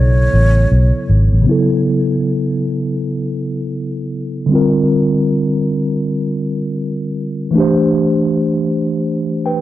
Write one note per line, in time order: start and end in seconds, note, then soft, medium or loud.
0.00 0.27 B1 medium
0.00 1.02 C#3 medium
0.00 1.03 F#3 medium
0.00 1.04 B3 medium
0.00 1.05 E4 medium
0.00 1.07 A4 medium
0.00 1.09 C#5 medium
0.34 0.65 A1 medium
0.72 0.90 B1 medium
1.09 1.28 G#1 medium
1.33 1.45 A1 medium
1.42 4.44 C#3 medium
1.42 4.45 F#3 medium
1.47 4.46 B3 medium
1.47 4.47 E4 medium
1.51 4.49 A4 medium
4.46 7.48 D3 medium
4.46 7.49 G3 medium
4.51 7.50 C4 medium
4.51 7.51 F4 medium
4.55 7.53 A#4 medium
7.51 9.61 E3 medium
7.51 9.61 A3 medium
7.55 9.61 D4 medium
7.55 9.42 G4 medium
7.60 9.43 C5 medium
9.46 9.61 B4 soft
9.46 9.61 G5 medium